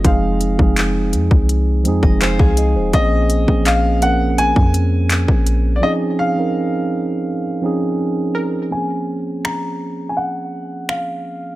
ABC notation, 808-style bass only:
X:1
M:4/4
L:1/16
Q:1/4=83
K:Bbm
V:1 name="808-style bass" clef=bass
F,,,3 F,,,3 F,, C,,3 F,, F,,,2 C,,2 E,,, | B,,,3 B,,,6 F,,4 B,,,3 | z16 | z16 |]